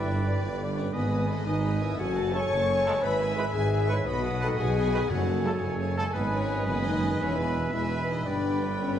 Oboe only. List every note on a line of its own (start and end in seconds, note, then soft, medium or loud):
0.00 0.66 D5 medium
0.93 1.42 D#5 medium
1.48 1.98 D#5 medium
2.00 3.04 C#5 medium
3.03 4.07 E5 medium
4.06 5.12 D#5 medium
5.10 6.14 C#5 medium
6.15 7.23 D#5 medium
7.22 8.28 E5 medium
8.26 8.99 D5 medium